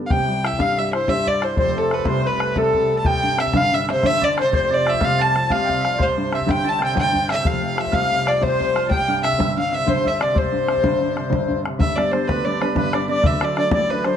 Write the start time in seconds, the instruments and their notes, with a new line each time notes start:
Already playing: hammered dulcimer G4 A4 B4
0.07 grand piano C2, fiddle F5, hammered dulcimer G5, accordion G5, bodhran
0.11 grand piano C3, fiddle G5
0.20 bodhran
0.28 grand piano G3
0.43 grand piano E4, hammered dulcimer E5, fiddle E5, bodhran
0.53 bodhran
0.59 grand piano G2 G3, hammered dulcimer F5, accordion F5, fiddle F5, bodhran
0.74 accordion F5
0.78 grand piano G3, hammered dulcimer E5, accordion E5, fiddle E5
0.93 grand piano E4, fiddle C5, accordion C5, hammered dulcimer C5, bodhran
1.08 grand piano G2 G3, hammered dulcimer E5, fiddle E5, accordion E5, bodhran
1.26 grand piano G3, accordion D5, hammered dulcimer D5, fiddle D5, bodhran
1.41 grand piano E4, hammered dulcimer C5, accordion C5, fiddle C5, bodhran
1.56 grand piano F1 F2, accordion C5, hammered dulcimer C5, fiddle C5, bodhran
1.68 hammered dulcimer C5, bodhran
1.75 grand piano C3, accordion A4, fiddle A4
1.82 hammered dulcimer C5
1.91 grand piano A3, hammered dulcimer B4, fiddle B4, bodhran
1.99 bodhran
2.05 grand piano C2 C3, fiddle C5, accordion C5, hammered dulcimer C5, bodhran
2.25 grand piano C3, accordion B4, hammered dulcimer B4, fiddle B4
2.40 grand piano A3, bodhran
2.56 grand piano C2 C3, accordion A4, hammered dulcimer A4, fiddle A4, bodhran
2.74 grand piano C3, bodhran
2.90 grand piano A3
2.99 fiddle A5
3.05 grand piano C2, accordion G5, hammered dulcimer G5, fiddle G5, bodhran
3.14 bodhran
3.23 grand piano G2
3.38 grand piano C3, accordion E5, hammered dulcimer E5, fiddle E5, bodhran
3.47 bodhran
3.53 grand piano G1 G2, hammered dulcimer F5, accordion F5, fiddle F5, bodhran
3.72 grand piano G2, accordion E5, hammered dulcimer E5, fiddle E5
3.88 grand piano C3, hammered dulcimer C5, fiddle C5, bodhran
4.03 grand piano G1 G2, hammered dulcimer E5, accordion E5, fiddle E5, bodhran
4.21 grand piano G2, hammered dulcimer D5, accordion D5, fiddle D5, bodhran
4.37 grand piano C3, hammered dulcimer C5, accordion C5, fiddle C5, bodhran
4.52 grand piano F1 F2, hammered dulcimer C5, accordion C5, fiddle C5, bodhran
4.62 bodhran
4.70 grand piano C3, hammered dulcimer D5, fiddle D5
4.86 grand piano F3, hammered dulcimer E5, accordion E5, fiddle E5, bodhran
4.94 bodhran
5.00 grand piano C2 C3, hammered dulcimer F5, accordion F5, bodhran
5.05 fiddle F5
5.19 grand piano C3, hammered dulcimer A5, accordion A5, fiddle A5
5.35 grand piano F3, bodhran
5.50 grand piano C2 C3, accordion F5, hammered dulcimer F5, fiddle F5, bodhran
5.64 accordion G5
5.69 grand piano C3, accordion F5, bodhran
5.80 accordion E5
5.84 grand piano F3, accordion F5, bodhran
5.93 accordion D5
5.98 grand piano C2, hammered dulcimer C5, accordion C5, bodhran
6.03 fiddle C5
6.09 bodhran
6.17 grand piano G2
6.32 grand piano C3, hammered dulcimer E5, accordion E5, fiddle E5, bodhran
6.41 bodhran
6.47 grand piano G1 G2, hammered dulcimer G5, accordion G5, bodhran
6.51 fiddle G5
6.64 grand piano G2, hammered dulcimer A5, accordion A5
6.69 fiddle A5
6.79 grand piano C3, hammered dulcimer G5, accordion G5, bodhran
6.85 fiddle G5
6.95 grand piano G1 G2, hammered dulcimer G5, accordion G5, bodhran
6.99 fiddle G5
7.13 grand piano G2, bodhran
7.28 grand piano C3, hammered dulcimer E5, accordion E5, bodhran
7.32 fiddle E5
7.43 grand piano F1 F2, hammered dulcimer F5, accordion F5, bodhran
7.47 fiddle F5
7.54 bodhran
7.63 grand piano C3
7.76 grand piano F3, hammered dulcimer E5, accordion E5, bodhran
7.81 fiddle E5
7.87 bodhran
7.92 grand piano C2 C3, hammered dulcimer F5, accordion F5, fiddle F5, bodhran
8.11 grand piano C3
8.25 grand piano F3, hammered dulcimer D5, accordion D5, fiddle D5, bodhran
8.41 grand piano C2 C3, hammered dulcimer C5, accordion C5, fiddle C5, bodhran
8.60 grand piano C3, bodhran
8.74 grand piano F3, hammered dulcimer F5, bodhran
8.86 grand piano C2, accordion A5
8.91 fiddle G5, hammered dulcimer G5, accordion G5, bodhran
9.01 bodhran
9.08 grand piano G2, hammered dulcimer F5
9.23 grand piano C3, fiddle E5, accordion E5, hammered dulcimer E5, bodhran
9.33 bodhran
9.38 grand piano G1 G2, hammered dulcimer E5, bodhran
9.56 grand piano G2, accordion F5, fiddle F5
9.71 grand piano C3, accordion E5, hammered dulcimer E5, fiddle E5
9.86 grand piano G1 G2, accordion C5, hammered dulcimer C5, fiddle C5, bodhran
10.04 grand piano G2, accordion E5, hammered dulcimer E5, fiddle E5, bodhran
10.19 grand piano C3, accordion D5, hammered dulcimer D5, fiddle D5, bodhran
10.34 grand piano C2, accordion C5, hammered dulcimer C5, bodhran
10.38 fiddle C5
10.46 bodhran
10.52 grand piano G2
10.68 grand piano C3, bodhran
10.77 bodhran
10.83 grand piano G1 G2, bodhran
11.01 grand piano G2
11.16 grand piano C3, bodhran
11.30 grand piano G1 G2, bodhran
11.48 grand piano G2, bodhran
11.64 grand piano C3, bodhran
11.78 grand piano G1 G2, accordion E5, fiddle E5, hammered dulcimer E5, bodhran
11.96 grand piano G3 B3 D4, fiddle D5, hammered dulcimer D5, accordion D5, bodhran
12.12 grand piano G3 B3 D4, fiddle C5, hammered dulcimer C5, accordion C5, bodhran
12.27 grand piano D2, fiddle B4, hammered dulcimer B4, accordion B4, bodhran
12.45 grand piano G3 B3 D4, fiddle D5, hammered dulcimer D5, accordion D5
12.60 grand piano G3 B3 D4, accordion B4, hammered dulcimer B4, fiddle B4, bodhran
12.75 grand piano G1 G2, accordion B4, fiddle B4, hammered dulcimer B4, bodhran
12.93 grand piano G3 B3 D4, hammered dulcimer D5, accordion D5, fiddle D5, bodhran
13.08 grand piano G3 B3 D4, accordion D5, hammered dulcimer D5, fiddle D5
13.23 grand piano D1 D2, hammered dulcimer E5, accordion E5, fiddle E5, bodhran
13.41 grand piano F#3 A3 D4, hammered dulcimer D5, accordion D5, fiddle D5, bodhran
13.56 grand piano F#3 A3 D4, hammered dulcimer D5, fiddle D5, accordion D5, bodhran
13.71 grand piano A1, hammered dulcimer D5, accordion D5, fiddle D5, bodhran
13.89 grand piano F#3 A3 D4, hammered dulcimer B4, accordion B4, fiddle B4
14.04 grand piano F#3 A3 D4, hammered dulcimer C5, accordion C5, fiddle C5, bodhran